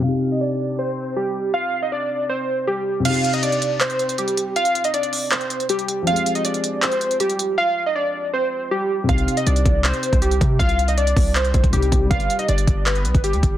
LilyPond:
<<
  \new Staff \with { instrumentName = "Synth keys" } { \time 4/4 \key c \minor \tempo 4 = 159 f''8. ees''16 d''4 c''4 g'4 | f''8. ees''16 d''4 c''4 g'4 | f''8. ees''16 d''4 c''4 g'4 | f''8. ees''16 d''4 c''4 g'4 |
f''8. ees''16 d''4 c''4 g'4 | f''8. ees''16 d''4 c''4 g'4 | f''8. ees''16 d''4 c''4 g'4 | f''8. ees''16 d''4 c''4 g'4 |
f''8. ees''16 d''4 b'4 g'4 | }
  \new Staff \with { instrumentName = "Grand piano" } { \time 4/4 \key c \minor <c c' ees' g'>1~ | <c c' ees' g'>1 | <c c' ees' g'>1~ | <c c' ees' g'>1 |
<f aes c' g'>1~ | <f aes c' g'>1 | <c c' ees' g'>1~ | <c c' ees' g'>2. <c c' ees' g'>4 |
<g g' b' d''>1 | }
  \new Staff \with { instrumentName = "808-style bass" } { \clef bass \time 4/4 \key c \minor r1 | r1 | r1 | r1 |
r1 | r1 | c,8 r8 c,8 c,8. r8 c,8. c8 | c,4. c,4 c,8 c,8 c,8 |
g,,8 r8 g,,8 g,,4 b,,16 g,,8 d,16 g,,8 | }
  \new DrumStaff \with { instrumentName = "Drums" } \drummode { \time 4/4 r4 r4 r4 r4 | r4 r4 r4 r4 | <cymc hh>16 hh16 hh16 hh16 hh16 hh16 hh8 <hc hh>16 hh16 hh16 hh16 hh16 hh16 hh8 | hh16 hh16 hh16 hh16 hh16 hh16 hho8 <hc hh>16 hh16 hh16 hh16 hh16 hh16 hh8 |
hh16 hh16 hh16 hh16 hh16 hh16 hh8 <hc hh>16 hh16 hh16 hh16 hh16 hh16 hh8 | r4 r4 r4 r4 | <hh bd>16 hh16 hh16 hh16 hh16 hh16 <hh bd>8 <hc hh>16 hh16 hh16 <hh bd>16 hh16 hh16 <hh bd>8 | <hh bd>16 hh16 hh16 hh16 hh16 hh16 <hho bd>8 <hc hh>16 hh16 <hh bd>16 <hh bd>16 hh16 hh16 <hh bd>8 |
<hh bd>16 hh16 hh16 hh16 hh16 hh16 <hh bd>8 <hc hh>16 hh16 hh16 <hh bd>16 hh16 hh16 <hh bd>8 | }
>>